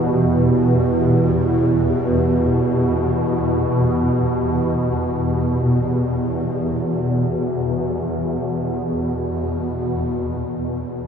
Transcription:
Already playing: synth drone E2 B2, analog synth pad E3 B3 E4 G4
10.17 synth drone E2 B2

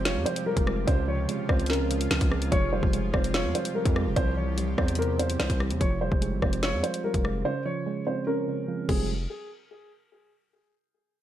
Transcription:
Already playing: 808-style bass F1, ambient pad C3 F3 F4 G4, synth keys F3 G3 G#3 C4
0.05 synth keys F4, grand piano C#5, snare
0.16 808-style bass F2
0.26 synth keys F3, grand piano C5, closed hi-hat
0.36 closed hi-hat
0.46 synth keys G3, grand piano A#4
0.57 808-style bass F1, kick, closed hi-hat
0.67 synth keys G#3, cross-stick
0.87 808-style bass C#2, synth keys C#3, ambient pad C#3 G#4, grand piano C5, kick, closed hi-hat
1.08 synth keys F3, grand piano C#5
1.29 synth keys G#3, closed hi-hat
1.49 808-style bass C#2, synth keys C4, grand piano C5, kick, cross-stick
1.60 closed hi-hat
1.66 synth keys C#4, grand piano A#4, snare, closed hi-hat
1.73 closed hi-hat
1.90 synth keys C#3, closed hi-hat
2.01 closed hi-hat
2.11 808-style bass C#2, synth keys F3, snare
2.21 808-style bass C#2, kick, closed hi-hat
2.32 synth keys G#3, cross-stick
2.42 closed hi-hat
2.52 808-style bass F1, ambient pad C3 F3 G4, synth keys F3, grand piano C#5, kick, closed hi-hat
2.73 synth keys G3, grand piano C5
2.83 808-style bass F1, kick
2.93 synth keys G#3, closed hi-hat
3.13 808-style bass F1, synth keys C4, grand piano C5, kick, cross-stick
3.24 closed hi-hat
3.34 synth keys F4, grand piano C#5, snare
3.44 808-style bass F2
3.55 synth keys F3, grand piano C5, closed hi-hat
3.65 closed hi-hat
3.75 synth keys G3, grand piano A#4
3.85 808-style bass F2, kick, closed hi-hat
3.96 synth keys G#3, cross-stick
4.06 808-style bass E1
4.16 808-style bass C2, ambient pad C3 G3 E4, synth keys C3, grand piano C5, kick, closed hi-hat
4.37 synth keys E3, grand piano C#5
4.57 synth keys G3, closed hi-hat
4.78 808-style bass E2, synth keys C4, grand piano C5, kick, cross-stick
4.88 closed hi-hat
4.95 grand piano A#4, synth keys C5, closed hi-hat
5.02 closed hi-hat
5.19 synth keys C3, grand piano C5, closed hi-hat
5.30 closed hi-hat
5.39 808-style bass C2, synth keys E3, grand piano C5, snare
5.50 808-style bass C2, kick, closed hi-hat
5.60 synth keys G3, cross-stick
5.70 808-style bass E2, closed hi-hat
5.80 808-style bass F1, synth keys F3, grand piano C#5, kick, closed hi-hat
6.01 synth keys G3, grand piano C5
6.12 808-style bass F1, kick
6.22 synth keys G#3, closed hi-hat
6.32 808-style bass G#1
6.42 808-style bass F1, synth keys C4, grand piano C5, kick, cross-stick
6.53 closed hi-hat
6.63 synth keys F4, grand piano C#5, snare
6.73 808-style bass F2
6.83 synth keys F3, grand piano C5, closed hi-hat
6.94 closed hi-hat
7.04 synth keys G3, grand piano A#4
7.14 808-style bass F1, kick, closed hi-hat
7.24 synth keys G#3, cross-stick
7.45 synth keys C#3, grand piano C5
7.65 synth keys F3, grand piano C#5
7.86 synth keys G#3
8.07 synth keys C4, grand piano C5
8.27 synth keys C#4, grand piano A#4
8.48 synth keys C#3
8.68 synth keys F3
8.89 808-style bass F1, synth keys F3 G3 G#3 C4, grand piano G#4, kick, closed hi-hat, crash

